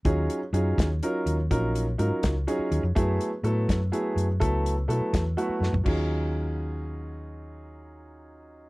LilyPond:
<<
  \new Staff \with { instrumentName = "Grand piano" } { \time 6/8 \key ges \lydian \tempo 4. = 83 <ges des' ees' f' aes'>8 r8 <ges des' ees' f' aes'>8 r8 <ges des' ees' f' bes'>8 r8 | <ges des' ees' f' bes'>8 r8 <ges des' ees' f' bes'>8 r8 <ges des' ees' f' aes'>8 r8 | <ges a ces' fes' aes'>8 r8 <ges a ces' fes' a'>8 r8 <ges a ces' fes' aes'>8 r8 | <ges a ces' fes' a'>8 r8 <ges a ces' fes' a'>8 r8 <ges a ces' fes' ges'>8 r8 |
<ges des' ees' f' aes'>2.~ | <ges des' ees' f' aes'>2. | }
  \new Staff \with { instrumentName = "Fingered electric bass" } { \clef bass \time 6/8 \key ges \lydian ees,8 r8 ges,8 ees,8 r8 ees,8 | bes,,4 aes,16 r16 des,8 r8 ees,16 f,16 | ges,8 r8 a,8 ges,8 r8 ges,8 | des,4 ces16 r16 fes,8 r8 ges,16 ges,16 |
ees,2.~ | ees,2. | }
  \new DrumStaff \with { instrumentName = "Drums" } \drummode { \time 6/8 <hh bd>8 hh8 hh8 <hh bd sn>8 hh8 hh8 | <hh bd>8 hh8 hh8 <hh bd sn>8 hh8 hh8 | <hh bd>8 hh8 hh8 <hh bd sn>8 hh8 hh8 | <hh bd>8 hh8 hh8 <hh bd sn>8 hh8 sn16 tomfh16 |
<cymc bd>4. r4. | r4. r4. | }
>>